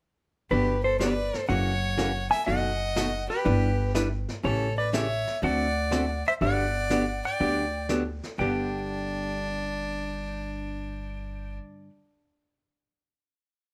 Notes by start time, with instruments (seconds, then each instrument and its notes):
0.50 upright bass G1, hollow-body jazz guitar D3 F#3 B3 D4 G4, fiddle G4, electric slide guitar B4, brush sweep
0.84 fiddle A4, electric slide guitar C5
1.00 hollow-body jazz guitar D3 F#3 B3 D4 G4, fiddle B4, electric slide guitar D5, snare, hi-hat pedal
1.34 snare
1.49 upright bass F#1, hollow-body jazz guitar C#3 E3 A#3 C#4 F#4, fiddle C#5, electric slide guitar F#5, brush sweep
1.98 hollow-body jazz guitar C#3 E3 A#3 C#4 F#4, snare, hi-hat pedal
2.30 fiddle E5, electric slide guitar G#5, snare
2.46 upright bass F#1, hollow-body jazz guitar B2 F#3 A3 D#4 F#4, fiddle D#5, electric slide guitar F#5, brush sweep
2.96 hollow-body jazz guitar B2 F#3 A3 D#4 F#4, snare, hi-hat pedal
3.29 fiddle G4, electric slide guitar B4
3.45 upright bass G1, hollow-body jazz guitar G3 D4 E4 B4, brush sweep
3.95 hollow-body jazz guitar G3 D4 E4 B4, snare, hi-hat pedal
4.28 snare
4.44 upright bass A1, hollow-body jazz guitar C#3 E3 A3 C#4 G4, fiddle A4, electric slide guitar C#5, brush sweep
4.78 fiddle B4, electric slide guitar D5
4.93 hollow-body jazz guitar C#3 E3 A3 C#4 G4, fiddle C#5, electric slide guitar E5, snare, hi-hat pedal
5.27 snare
5.42 upright bass D2, hollow-body jazz guitar D3 A3 C4 F#4 A4, fiddle D5, electric slide guitar F#5, brush sweep
5.91 hollow-body jazz guitar D3 A3 C4 F#4 A4, snare, hi-hat pedal
6.27 fiddle C5, electric slide guitar E5
6.41 upright bass G1, hollow-body jazz guitar D3 F#3 B3 D4 G4, fiddle D5, electric slide guitar F#5, brush sweep
6.90 hollow-body jazz guitar D3 F#3 B3 D4 G4, snare, hi-hat pedal
7.25 fiddle D5, electric slide guitar G5
7.40 upright bass D2, hollow-body jazz guitar D3 F#3 B3 D4 G4, brush sweep
7.89 hollow-body jazz guitar D3 F#3 B3 D4 G4, snare, hi-hat pedal
8.23 snare
8.38 upright bass G1, hollow-body jazz guitar G2 D3 B3 D4 G4, fiddle D4, electric slide guitar G5